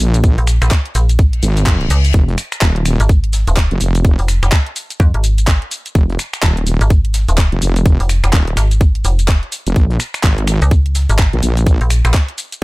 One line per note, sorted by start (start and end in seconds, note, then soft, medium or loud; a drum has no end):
0.00 0.36 A#1 loud
0.00 closed hi-hat medium
0.00 open hi-hat loud
0.00 shaker medium
0.14 closed hi-hat medium
0.14 shaker soft
0.24 kick loud
0.24 closed hi-hat medium
0.24 shaker soft
0.38 0.60 A#1 loud
0.38 open hi-hat medium
0.47 finger snap medium
0.47 closed hi-hat medium
0.47 open hi-hat loud
0.47 shaker medium
0.62 0.70 A#1 loud
0.62 finger snap medium
0.62 closed hi-hat medium
0.62 shaker soft
0.71 kick loud
0.71 snare loud
0.71 clap loud
0.71 closed hi-hat medium
0.71 shaker soft
0.86 closed hi-hat medium
0.95 1.41 A#1 loud
0.95 closed hi-hat medium
0.95 open hi-hat loud
0.95 shaker medium
1.09 closed hi-hat medium
1.09 shaker soft
1.19 kick loud
1.19 closed hi-hat medium
1.19 reverse cymbal medium
1.19 shaker soft
1.33 closed hi-hat medium
1.43 1.89 G#1 loud
1.43 closed hi-hat medium
1.43 open hi-hat loud
1.43 shaker medium
1.57 closed hi-hat medium
1.57 shaker soft
1.66 kick loud
1.66 snare loud
1.66 clap loud
1.66 closed hi-hat medium
1.66 shaker soft
1.81 closed hi-hat soft
1.90 2.13 C#2 loud
1.90 closed hi-hat medium
1.90 open hi-hat loud
1.90 shaker medium
2.05 closed hi-hat medium
2.05 shaker soft
2.14 2.36 F1 medium
2.14 kick loud
2.14 closed hi-hat medium
2.14 shaker soft
2.29 closed hi-hat soft
2.38 finger snap medium
2.38 closed hi-hat medium
2.38 open hi-hat loud
2.38 shaker medium
2.52 finger snap medium
2.52 closed hi-hat medium
2.52 closed hi-hat soft
2.52 shaker soft
2.61 2.98 D#1 loud
2.61 kick loud
2.61 snare loud
2.61 clap loud
2.61 closed hi-hat medium
2.61 shaker soft
2.76 closed hi-hat medium
2.86 finger snap medium
2.86 closed hi-hat medium
2.86 open hi-hat loud
2.86 shaker medium
3.00 3.45 G#1 loud
3.00 closed hi-hat medium
3.00 shaker soft
3.09 kick loud
3.09 closed hi-hat medium
3.09 shaker soft
3.24 closed hi-hat medium
3.33 snare soft
3.33 closed hi-hat medium
3.33 open hi-hat loud
3.33 shaker medium
3.47 3.69 D#1 loud
3.47 closed hi-hat medium
3.47 shaker soft
3.57 kick loud
3.57 snare loud
3.57 clap loud
3.57 closed hi-hat medium
3.57 shaker soft
3.71 3.79 F1 loud
3.71 closed hi-hat soft
3.81 4.17 F1 loud
3.81 closed hi-hat medium
3.81 open hi-hat loud
3.81 shaker medium
3.95 closed hi-hat medium
3.95 shaker soft
4.05 kick loud
4.05 closed hi-hat medium
4.05 shaker soft
4.19 4.41 F1 loud
4.19 open hi-hat medium
4.28 finger snap medium
4.28 closed hi-hat medium
4.28 open hi-hat loud
4.28 shaker medium
4.43 4.51 F1 loud
4.43 finger snap medium
4.43 closed hi-hat medium
4.43 shaker soft
4.52 kick loud
4.52 snare loud
4.52 clap loud
4.52 closed hi-hat loud
4.52 shaker soft
4.67 closed hi-hat medium
4.76 closed hi-hat medium
4.76 open hi-hat loud
4.76 shaker medium
4.90 closed hi-hat medium
4.90 shaker soft
5.00 5.12 F2 loud
5.00 kick loud
5.00 closed hi-hat medium
5.00 shaker soft
5.14 5.60 G#1 loud
5.14 closed hi-hat medium
5.24 closed hi-hat medium
5.24 open hi-hat loud
5.24 shaker medium
5.38 closed hi-hat medium
5.38 shaker soft
5.47 kick loud
5.47 snare loud
5.47 clap loud
5.47 closed hi-hat medium
5.47 shaker soft
5.62 closed hi-hat soft
5.71 closed hi-hat medium
5.71 open hi-hat loud
5.71 shaker medium
5.86 closed hi-hat medium
5.86 shaker soft
5.95 6.17 F1 loud
5.95 kick loud
5.95 closed hi-hat medium
5.95 shaker soft
6.10 closed hi-hat soft
6.19 finger snap medium
6.19 closed hi-hat medium
6.19 open hi-hat loud
6.19 shaker medium
6.33 finger snap medium
6.33 closed hi-hat soft
6.33 closed hi-hat medium
6.33 shaker soft
6.43 6.79 D#1 loud
6.43 kick loud
6.43 snare loud
6.43 clap loud
6.43 closed hi-hat loud
6.43 shaker soft
6.57 closed hi-hat medium
6.67 closed hi-hat medium
6.67 open hi-hat loud
6.67 shaker medium
6.81 7.26 G#1 loud
6.81 closed hi-hat medium
6.81 shaker soft
6.90 kick loud
6.90 closed hi-hat medium
6.90 shaker soft
7.05 closed hi-hat medium
7.14 snare soft
7.14 closed hi-hat medium
7.14 open hi-hat loud
7.14 shaker medium
7.28 7.50 D#1 loud
7.28 closed hi-hat medium
7.28 shaker soft
7.38 kick loud
7.38 snare loud
7.38 clap loud
7.38 closed hi-hat medium
7.38 shaker soft
7.52 7.60 F1 loud
7.52 closed hi-hat soft
7.62 7.98 F1 loud
7.62 closed hi-hat medium
7.62 open hi-hat loud
7.62 shaker medium
7.76 closed hi-hat medium
7.76 shaker soft
7.86 kick loud
7.86 closed hi-hat loud
7.86 shaker soft
8.00 8.22 F1 loud
8.00 open hi-hat medium
8.09 finger snap medium
8.09 closed hi-hat medium
8.09 open hi-hat loud
8.09 shaker medium
8.24 8.32 F1 loud
8.24 finger snap medium
8.24 closed hi-hat medium
8.24 shaker soft
8.33 8.55 D#1 medium
8.33 kick loud
8.33 snare loud
8.33 clap loud
8.33 closed hi-hat medium
8.33 shaker soft
8.47 closed hi-hat medium
8.57 9.03 G#1 loud
8.57 finger snap medium
8.57 closed hi-hat medium
8.57 open hi-hat loud
8.57 shaker medium
8.71 closed hi-hat medium
8.71 shaker soft
8.81 kick loud
8.81 closed hi-hat medium
8.81 shaker soft
8.95 closed hi-hat medium
9.05 9.41 F1 loud
9.05 closed hi-hat medium
9.05 open hi-hat loud
9.05 shaker medium
9.19 closed hi-hat medium
9.19 shaker soft
9.28 kick loud
9.28 snare loud
9.28 clap loud
9.28 closed hi-hat medium
9.28 shaker soft
9.43 closed hi-hat soft
9.52 closed hi-hat medium
9.52 open hi-hat loud
9.52 shaker medium
9.67 9.75 F1 medium
9.67 closed hi-hat medium
9.67 shaker soft
9.76 9.98 A#1 loud
9.76 kick loud
9.76 closed hi-hat medium
9.76 shaker soft
9.91 closed hi-hat soft
10.00 finger snap medium
10.00 closed hi-hat medium
10.00 open hi-hat loud
10.00 shaker medium
10.14 finger snap medium
10.14 closed hi-hat medium
10.14 closed hi-hat soft
10.14 shaker soft
10.23 10.60 G#1 loud
10.23 kick loud
10.23 snare loud
10.23 clap loud
10.23 closed hi-hat medium
10.23 shaker soft
10.38 closed hi-hat soft
10.47 finger snap medium
10.47 closed hi-hat medium
10.47 open hi-hat loud
10.47 shaker medium
10.62 11.07 C#2 loud
10.62 closed hi-hat medium
10.62 shaker soft
10.71 kick loud
10.71 closed hi-hat medium
10.71 shaker soft
10.86 closed hi-hat medium
10.95 snare soft
10.95 closed hi-hat medium
10.95 open hi-hat loud
10.95 shaker medium
11.09 11.31 G#1 loud
11.09 closed hi-hat medium
11.09 shaker soft
11.19 kick loud
11.19 snare loud
11.19 clap loud
11.19 closed hi-hat medium
11.19 shaker soft
11.33 11.41 A#1 loud
11.33 closed hi-hat soft
11.43 11.79 A#1 loud
11.43 closed hi-hat medium
11.43 open hi-hat loud
11.43 shaker medium
11.57 closed hi-hat medium
11.57 shaker soft
11.67 kick loud
11.67 closed hi-hat medium
11.67 shaker soft
11.81 12.03 A#1 loud
11.81 open hi-hat medium
11.90 finger snap medium
11.90 closed hi-hat medium
11.90 open hi-hat loud
11.90 shaker medium
12.05 12.13 A#1 loud
12.05 finger snap medium
12.05 closed hi-hat medium
12.05 shaker soft
12.14 kick loud
12.14 snare loud
12.14 clap loud
12.14 closed hi-hat medium
12.14 shaker soft
12.28 closed hi-hat medium
12.38 closed hi-hat medium
12.38 open hi-hat loud
12.38 shaker medium
12.52 closed hi-hat medium
12.52 shaker soft